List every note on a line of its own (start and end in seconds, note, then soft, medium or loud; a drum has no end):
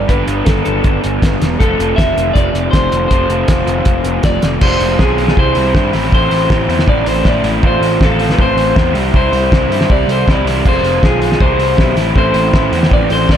0.08 0.22 G1 medium
0.08 1.58 G3 medium
0.08 1.59 B3 medium
0.08 1.59 D4 medium
0.08 0.45 B4 medium
0.08 1.59 B4 medium
0.08 kick loud
0.08 closed hi-hat medium
0.27 0.41 G1 medium
0.27 closed hi-hat medium
0.45 0.60 G1 medium
0.45 0.63 A4 medium
0.45 kick loud
0.45 snare loud
0.45 closed hi-hat loud
0.64 0.80 G1 medium
0.64 1.00 A4 medium
0.64 closed hi-hat medium
0.84 0.98 G1 medium
0.84 kick loud
0.84 closed hi-hat medium
1.04 1.18 G1 medium
1.04 closed hi-hat medium
1.22 1.36 G1 medium
1.22 kick loud
1.22 snare loud
1.22 closed hi-hat medium
1.42 1.55 E1 loud
1.42 snare medium
1.42 closed hi-hat medium
1.59 1.74 F1 loud
1.59 3.10 F3 medium
1.59 3.09 A3 medium
1.59 3.11 C4 medium
1.59 3.12 F4 medium
1.59 1.99 A4 loud
1.59 3.10 A4 medium
1.59 kick loud
1.59 closed hi-hat medium
1.79 1.93 F1 medium
1.79 closed hi-hat medium
1.96 2.11 F1 medium
1.96 2.33 E5 loud
1.96 kick loud
1.96 snare loud
1.96 closed hi-hat medium
2.16 2.30 F1 medium
2.16 closed hi-hat medium
2.33 2.49 F1 medium
2.33 2.70 D5 loud
2.33 kick loud
2.33 closed hi-hat medium
2.54 2.68 F1 medium
2.54 closed hi-hat medium
2.71 2.87 F1 medium
2.71 3.07 C5 medium
2.71 kick loud
2.71 snare loud
2.71 closed hi-hat medium
2.92 3.05 F1 medium
2.92 closed hi-hat medium
3.08 3.24 F1 loud
3.08 4.60 F3 medium
3.08 4.60 A3 medium
3.08 4.61 C4 medium
3.08 4.18 C5 medium
3.08 kick loud
3.08 closed hi-hat medium
3.12 4.61 F4 medium
3.12 4.61 A4 loud
3.29 3.43 F1 medium
3.29 closed hi-hat medium
3.48 3.62 F1 medium
3.48 kick loud
3.48 snare loud
3.48 closed hi-hat loud
3.66 3.80 F1 medium
3.66 closed hi-hat medium
3.85 4.00 F1 medium
3.85 kick loud
3.85 closed hi-hat loud
4.04 4.18 F1 medium
4.04 closed hi-hat medium
4.23 4.37 F1 medium
4.23 4.62 D5 loud
4.23 kick loud
4.23 snare loud
4.23 closed hi-hat medium
4.42 4.57 F1 loud
4.42 snare medium
4.42 closed hi-hat medium
4.60 4.77 F1 loud
4.60 5.17 F2 medium
4.60 5.18 C3 medium
4.60 4.96 F3 medium
4.60 4.98 G#3 medium
4.60 5.00 C4 loud
4.60 4.99 F4 loud
4.60 5.01 C5 loud
4.60 kick loud
4.60 crash loud
4.80 4.96 F1 medium
4.80 open hi-hat medium
4.98 5.31 B1 medium
4.98 5.18 F3 medium
4.98 5.17 G#3 medium
4.98 5.18 C4 medium
4.98 5.16 F4 medium
4.98 5.39 G#4 loud
4.98 kick loud
4.98 snare loud
5.17 5.36 F3 medium
5.17 5.36 G#3 medium
5.17 5.37 C4 medium
5.17 5.35 F4 medium
5.17 open hi-hat medium
5.28 snare medium
5.36 5.53 C2 medium
5.36 5.73 C3 medium
5.36 5.73 E3 medium
5.36 5.74 G3 medium
5.36 5.75 C4 loud
5.36 5.75 E4 loud
5.36 5.91 C5 loud
5.36 kick loud
5.55 5.72 C2 medium
5.55 open hi-hat medium
5.74 5.91 G2 medium
5.74 5.92 C3 medium
5.74 5.92 E3 medium
5.74 5.93 G3 loud
5.74 5.94 C4 loud
5.74 5.92 E4 loud
5.74 kick loud
5.74 snare loud
5.93 6.09 A1 medium
5.93 6.11 A2 medium
5.93 6.11 E3 medium
5.93 6.12 A3 medium
5.93 6.13 C4 medium
5.93 6.13 E4 loud
5.93 snare soft
5.93 open hi-hat medium
6.12 6.28 A1 loud
6.12 7.24 A2 medium
6.12 6.47 E3 medium
6.12 6.49 A3 loud
6.12 6.50 C4 medium
6.12 6.50 E4 loud
6.12 6.89 C5 medium
6.12 kick loud
6.31 6.47 A1 medium
6.31 open hi-hat medium
6.49 6.66 A1 medium
6.49 6.87 E3 medium
6.49 6.70 A3 medium
6.49 6.69 C4 medium
6.49 6.67 E4 medium
6.49 kick loud
6.49 snare loud
6.68 6.85 E2 medium
6.68 7.24 A3 medium
6.68 7.26 C4 medium
6.68 7.26 E4 medium
6.68 open hi-hat medium
6.79 snare medium
6.87 7.04 A1 loud
6.87 7.07 D5 loud
6.87 kick loud
7.06 7.22 A1 medium
7.06 7.27 C5 loud
7.06 open hi-hat medium
7.24 7.41 A1 medium
7.24 7.61 A2 loud
7.24 7.62 E3 loud
7.24 7.46 A3 loud
7.24 7.45 C4 loud
7.24 7.43 E4 loud
7.24 7.65 D5 loud
7.24 kick loud
7.24 snare loud
7.43 7.60 A1 loud
7.43 7.63 A3 medium
7.43 7.64 C4 medium
7.43 7.62 E4 medium
7.43 open hi-hat medium
7.63 7.79 A1 loud
7.63 8.19 A2 medium
7.63 8.00 F3 medium
7.63 8.01 A3 medium
7.63 8.02 C4 medium
7.63 8.02 F4 medium
7.63 kick loud
7.67 8.04 C5 medium
7.80 7.97 A1 loud
7.80 open hi-hat medium
8.00 8.32 A1 medium
8.00 8.38 F3 medium
8.00 8.22 A3 medium
8.00 8.21 C4 medium
8.00 8.19 F4 medium
8.00 8.34 A4 loud
8.00 kick loud
8.00 snare loud
8.19 8.76 A3 medium
8.19 8.77 C4 medium
8.19 8.76 F4 medium
8.19 open hi-hat medium
8.30 8.39 B4 medium
8.30 snare medium
8.39 8.55 A1 medium
8.39 8.93 C5 loud
8.39 kick loud
8.55 8.72 A1 medium
8.55 open hi-hat medium
8.76 8.92 E2 medium
8.76 8.94 A2 loud
8.76 8.94 F3 loud
8.76 8.94 A3 loud
8.76 8.94 C4 loud
8.76 8.93 F4 loud
8.76 kick loud
8.76 snare loud
8.93 9.10 C2 loud
8.93 9.12 C3 medium
8.93 9.13 E3 medium
8.93 9.14 G3 medium
8.93 9.15 C4 medium
8.93 9.15 E4 medium
8.93 open hi-hat medium
9.13 9.30 C2 loud
9.13 9.70 C3 medium
9.13 9.50 E3 loud
9.13 9.52 G3 loud
9.13 9.53 C4 medium
9.13 9.52 E4 loud
9.13 9.91 C5 loud
9.13 kick loud
9.32 9.48 C2 loud
9.32 open hi-hat medium
9.51 9.68 C2 medium
9.51 9.89 E3 medium
9.51 9.71 G3 medium
9.51 9.70 C4 medium
9.51 9.69 E4 medium
9.51 kick loud
9.51 snare loud
9.68 9.85 G2 medium
9.68 10.27 G3 medium
9.68 10.28 C4 medium
9.68 10.28 E4 medium
9.68 open hi-hat medium
9.81 snare medium
9.90 10.06 C2 loud
9.90 10.08 G4 medium
9.90 10.10 D5 loud
9.90 kick loud
10.07 10.24 C2 medium
10.07 10.27 A4 medium
10.07 open hi-hat medium
10.12 10.30 C5 medium
10.26 10.43 C2 medium
10.26 10.63 C3 medium
10.26 10.64 E3 medium
10.26 10.46 G3 medium
10.26 10.46 C4 medium
10.26 10.44 E4 loud
10.26 10.66 G4 medium
10.26 kick loud
10.26 snare loud
10.30 10.68 D5 loud
10.44 10.61 C2 medium
10.44 10.64 G3 medium
10.44 10.65 C4 medium
10.44 10.63 E4 medium
10.44 snare soft
10.44 open hi-hat medium
10.64 10.81 F1 loud
10.64 11.21 F2 medium
10.64 11.21 C3 medium
10.64 11.01 F3 loud
10.64 11.02 G#3 loud
10.64 11.03 C4 loud
10.64 11.03 F4 loud
10.64 11.01 G#4 medium
10.64 kick loud
10.64 crash medium
10.69 11.05 C5 loud
10.82 10.98 F1 loud
10.82 open hi-hat medium
11.02 11.35 B1 medium
11.02 11.23 F3 medium
11.02 11.22 G#3 medium
11.02 11.22 C4 medium
11.02 11.20 F4 medium
11.02 11.39 F4 medium
11.02 11.42 G#4 medium
11.02 kick loud
11.02 snare loud
11.21 11.40 F3 medium
11.21 11.40 G#3 medium
11.21 11.42 C4 medium
11.21 11.39 F4 medium
11.21 open hi-hat medium
11.32 snare medium
11.40 11.57 C2 medium
11.40 11.76 C3 medium
11.40 11.78 E3 medium
11.40 11.78 G3 loud
11.40 11.79 C4 loud
11.40 11.79 E4 loud
11.40 11.94 G4 medium
11.40 11.93 C5 medium
11.40 kick loud
11.58 11.74 C2 medium
11.58 open hi-hat medium
11.77 11.94 B1 medium
11.77 11.95 C3 medium
11.77 11.96 E3 loud
11.77 11.96 G3 medium
11.77 11.97 C4 loud
11.77 11.95 E4 loud
11.77 kick loud
11.77 snare loud
11.96 12.12 A1 medium
11.96 12.15 A2 medium
11.96 12.15 E3 medium
11.96 12.17 A3 medium
11.96 12.17 C4 medium
11.96 12.17 E4 loud
11.96 snare soft
11.96 open hi-hat medium
12.15 12.32 A1 loud
12.15 13.28 A2 medium
12.15 12.52 E3 medium
12.15 12.53 A3 loud
12.15 12.54 C4 medium
12.15 12.54 E4 loud
12.15 12.87 A4 medium
12.15 12.93 C5 medium
12.15 kick loud
12.34 12.50 A1 loud
12.34 open hi-hat medium
12.53 12.69 A1 medium
12.53 12.91 E3 medium
12.53 12.72 A3 medium
12.53 12.72 C4 medium
12.53 12.70 E4 medium
12.53 kick loud
12.53 snare loud
12.72 12.88 E2 medium
12.72 13.28 A3 medium
12.72 13.30 C4 medium
12.72 13.29 E4 medium
12.72 open hi-hat medium
12.83 snare medium
12.91 13.07 A1 loud
12.91 13.10 B4 medium
12.91 13.11 D5 loud
12.91 kick loud
13.10 13.26 A1 medium
13.10 13.28 A4 medium
13.10 13.30 C5 medium
13.10 open hi-hat medium
13.28 13.37 A1 medium
13.28 13.37 A2 loud
13.28 13.37 E3 medium
13.28 13.37 A3 loud
13.28 13.37 C4 loud
13.28 13.37 E4 loud
13.28 13.37 B4 medium
13.28 13.37 D5 loud
13.28 kick loud
13.28 snare loud